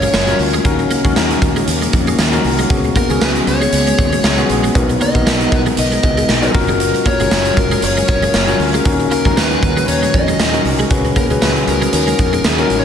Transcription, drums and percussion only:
0.02 closed hi-hat
0.13 snare, tambourine
0.27 closed hi-hat
0.39 open hi-hat
0.53 closed hi-hat
0.65 kick, closed hi-hat
0.79 closed hi-hat
0.91 closed hi-hat
1.05 kick, closed hi-hat
1.16 snare, tambourine
1.30 closed hi-hat
1.42 kick, closed hi-hat
1.56 closed hi-hat
1.68 closed hi-hat
1.82 closed hi-hat
1.93 kick, closed hi-hat
2.07 closed hi-hat
2.19 snare, tambourine
2.33 closed hi-hat
2.44 open hi-hat
2.59 closed hi-hat
2.70 kick, closed hi-hat
2.84 closed hi-hat
2.96 kick, closed hi-hat
3.10 closed hi-hat
3.21 snare, tambourine
3.36 closed hi-hat
3.47 closed hi-hat
3.61 closed hi-hat
3.73 closed hi-hat
3.87 closed hi-hat
3.98 kick, closed hi-hat
4.12 closed hi-hat
4.24 snare, tambourine
4.38 closed hi-hat
4.49 closed hi-hat
4.64 closed hi-hat
4.75 kick, closed hi-hat
4.89 closed hi-hat
5.01 closed hi-hat
5.15 kick, closed hi-hat
5.27 snare, tambourine
5.41 closed hi-hat
5.52 kick, closed hi-hat
5.66 closed hi-hat
5.77 closed hi-hat
5.92 closed hi-hat
6.03 kick, closed hi-hat
6.17 closed hi-hat
6.29 snare, tambourine
6.43 closed hi-hat
6.54 kick, open hi-hat
6.69 closed hi-hat
6.80 closed hi-hat
6.94 closed hi-hat
7.06 kick, closed hi-hat
7.20 closed hi-hat
7.31 snare, tambourine
7.45 closed hi-hat
7.57 kick, closed hi-hat
7.71 closed hi-hat
7.82 closed hi-hat
7.97 closed hi-hat
8.08 kick, closed hi-hat
8.22 closed hi-hat
8.34 snare, tambourine
8.48 closed hi-hat
8.60 open hi-hat
8.74 closed hi-hat
8.85 kick, closed hi-hat
9.00 closed hi-hat
9.11 closed hi-hat
9.25 kick, closed hi-hat
9.37 snare, tambourine
9.51 closed hi-hat
9.63 kick, closed hi-hat
9.77 closed hi-hat
9.88 closed hi-hat
10.03 closed hi-hat
10.14 kick, closed hi-hat
10.28 closed hi-hat
10.39 snare, tambourine
10.53 closed hi-hat
10.65 open hi-hat
10.79 closed hi-hat
10.90 kick, closed hi-hat
11.05 closed hi-hat
11.16 kick, closed hi-hat
11.30 closed hi-hat
11.42 snare, tambourine
11.56 closed hi-hat
11.68 closed hi-hat
11.82 closed hi-hat
11.93 closed hi-hat
12.08 closed hi-hat
12.19 kick, closed hi-hat
12.33 closed hi-hat
12.44 snare, tambourine
12.58 closed hi-hat
12.70 closed hi-hat

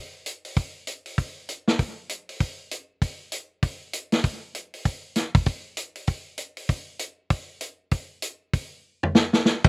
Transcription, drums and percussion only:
0.26 closed hi-hat
0.45 open hi-hat
0.56 kick, open hi-hat
0.87 closed hi-hat
1.06 open hi-hat
1.18 kick, open hi-hat
1.49 closed hi-hat
1.68 snare
1.79 kick, open hi-hat
2.09 closed hi-hat
2.29 open hi-hat
2.40 kick, open hi-hat
2.71 closed hi-hat
3.02 kick, open hi-hat
3.32 closed hi-hat
3.62 kick, open hi-hat
3.93 closed hi-hat
4.12 snare, open hi-hat
4.24 kick, open hi-hat
4.55 closed hi-hat
4.74 open hi-hat
4.85 kick, open hi-hat
5.16 snare, closed hi-hat
5.35 kick, open hi-hat
5.46 kick, open hi-hat
5.77 closed hi-hat
5.95 open hi-hat
6.07 kick, open hi-hat
6.38 closed hi-hat
6.57 open hi-hat
6.69 kick, open hi-hat
6.99 closed hi-hat
7.30 kick, open hi-hat
7.61 closed hi-hat
7.91 kick, open hi-hat
8.22 closed hi-hat
8.53 kick, open hi-hat
9.03 floor tom
9.15 snare
9.33 snare
9.45 snare
9.64 kick, crash

